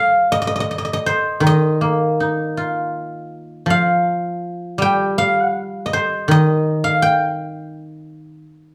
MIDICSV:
0, 0, Header, 1, 2, 480
1, 0, Start_track
1, 0, Tempo, 749064
1, 192, Time_signature, 4, 2, 24, 8
1, 4037, Tempo, 714286
1, 5683, End_track
2, 0, Start_track
2, 0, Title_t, "Guzheng"
2, 0, Program_c, 0, 107
2, 0, Note_on_c, 0, 55, 64
2, 0, Note_on_c, 0, 77, 108
2, 0, Note_on_c, 0, 79, 87
2, 180, Note_off_c, 0, 55, 0
2, 204, Note_on_c, 0, 75, 98
2, 264, Note_off_c, 0, 75, 0
2, 267, Note_on_c, 0, 75, 72
2, 300, Note_off_c, 0, 75, 0
2, 303, Note_on_c, 0, 75, 73
2, 354, Note_off_c, 0, 75, 0
2, 356, Note_on_c, 0, 75, 67
2, 384, Note_off_c, 0, 75, 0
2, 386, Note_on_c, 0, 75, 73
2, 451, Note_off_c, 0, 75, 0
2, 454, Note_on_c, 0, 75, 53
2, 499, Note_off_c, 0, 75, 0
2, 502, Note_on_c, 0, 75, 64
2, 541, Note_off_c, 0, 75, 0
2, 543, Note_on_c, 0, 75, 58
2, 595, Note_off_c, 0, 75, 0
2, 598, Note_on_c, 0, 75, 73
2, 616, Note_off_c, 0, 79, 0
2, 681, Note_on_c, 0, 72, 82
2, 899, Note_on_c, 0, 51, 62
2, 937, Note_off_c, 0, 75, 0
2, 939, Note_on_c, 0, 75, 85
2, 1017, Note_off_c, 0, 77, 0
2, 1161, Note_on_c, 0, 58, 43
2, 1412, Note_on_c, 0, 63, 41
2, 1649, Note_on_c, 0, 65, 42
2, 1950, Note_off_c, 0, 72, 0
2, 2085, Note_off_c, 0, 75, 0
2, 2128, Note_off_c, 0, 58, 0
2, 2346, Note_on_c, 0, 53, 55
2, 2358, Note_off_c, 0, 51, 0
2, 2372, Note_off_c, 0, 63, 0
2, 2373, Note_on_c, 0, 77, 86
2, 2608, Note_off_c, 0, 65, 0
2, 3064, Note_on_c, 0, 55, 55
2, 3088, Note_on_c, 0, 79, 93
2, 3317, Note_off_c, 0, 77, 0
2, 3320, Note_on_c, 0, 77, 83
2, 3754, Note_on_c, 0, 75, 60
2, 3787, Note_off_c, 0, 53, 0
2, 3802, Note_on_c, 0, 72, 82
2, 4024, Note_on_c, 0, 51, 64
2, 4043, Note_off_c, 0, 75, 0
2, 4046, Note_on_c, 0, 75, 94
2, 4085, Note_off_c, 0, 79, 0
2, 4397, Note_off_c, 0, 77, 0
2, 4400, Note_on_c, 0, 77, 87
2, 4512, Note_off_c, 0, 55, 0
2, 4523, Note_on_c, 0, 79, 91
2, 5120, Note_off_c, 0, 72, 0
2, 5247, Note_off_c, 0, 75, 0
2, 5468, Note_off_c, 0, 51, 0
2, 5519, Note_off_c, 0, 77, 0
2, 5566, Note_off_c, 0, 79, 0
2, 5683, End_track
0, 0, End_of_file